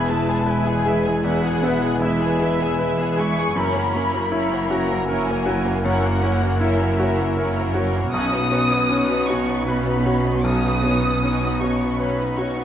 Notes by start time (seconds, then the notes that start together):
Already playing: E1 E2 G#3 B3 E4
0.08 G#3 E4 B4 E5 A5
0.28 B3 G#4 G#5
0.46 G#3 E4 B4 E5 G#5
0.66 B3 G#4 G#5
0.85 G#3 E4 G#4 B4 E5
1.05 B3 G#4 G#5
1.23 E2 G#3 E4 B4 E5 F#5
1.43 B3 G#4 G#5
1.61 G#3 B3 E4 B4 E5
1.82 B3 G#4 G#5
2.02 G#3 E4 B4 E5
2.20 B3 G#4 G#5
2.40 G#3 E4 G#4 B4 E5
2.60 B3 G#4 G#5
2.78 G#3 E4 B4 E5
2.97 B3 G#4 G#5
3.17 G#3 E4 G#4 B4 E5 C#6
3.36 B3 G#4 G#5
3.55 F#1 F#2 A#3 C#4 E4 A#4 C#5 B5
3.75 A#3 C#4 F#4 A#4
3.94 A#3 C#4 E4 A#4 C#5
4.13 A#3 C#4 F#4 A#4
4.32 C#4 E4 A#4 C#5
4.51 A#3 C#4 F#4 A#4
4.70 C#4 E4 F#4 A#4 C#5 A#5
4.89 A#3 C#4 F#4 A#4
5.08 C#4 E4 A#4 C#5 G#5
5.27 A#3 C#4 F#4 A#4
5.46 C#4 E4 F#4 A#4 C#5
5.65 A#3 C#4 F#4 A#4
5.84 F#2 C#4 E4 A#4 C#5 F#5
6.03 A#3 C#4 F#4 A#4
6.22 A#3 C#4 E4 A#4 C#5
6.40 A#3 C#4 F#4 A#4
6.59 C#4 E4 A#4 C#5 E5
6.78 A#3 C#4 F#4 A#4
6.98 C#4 E4 F#4 A#4 C#5
7.18 A#3 C#4 F#4 A#4
7.37 C#4 E4 A#4 C#5
7.57 A#3 C#4 F#4 A#4
7.74 C#4 E4 F#4 A#4 C#5
7.94 A#3 C#4 F#4 A#4
8.12 B1 B2 B3 C#4 D#4 F#4 C#5 D#6
8.32 B3 D#4 F#4 B4
8.51 B3 C#4 D#4 F#4 C#5
8.71 B3 D#4 F#4 B4
8.90 C#4 D#4 F#4 C#5
9.10 B3 D#4 F#4 B4
9.27 C#4 D#4 F#4 C#5 C#6
9.47 B3 D#4 F#4 B4
9.66 C#4 D#4 F#4 B4 C#5 B5
9.85 B3 D#4 F#4 B4
10.05 C#4 D#4 F#4 C#5
10.25 B3 D#4 F#4 B4
10.43 B1 C#4 D#4 F#4 C#5 D#6
10.64 B3 D#4 F#4 B4
10.84 B3 C#4 D#4 F#4 C#5
11.03 B3 D#4 F#4 B4
11.22 C#4 D#4 F#4 C#5
11.41 B3 D#4 F#4 B4
11.61 C#4 D#4 F#4 C#5 C#6
11.81 B3 D#4 F#4 B4
12.00 C#4 D#4 F#4 B4 C#5 B5
12.19 B3 D#4 F#4 B4
12.38 C#4 D#4 F#4 C#5 C#6
12.57 B3 D#4 F#4 B4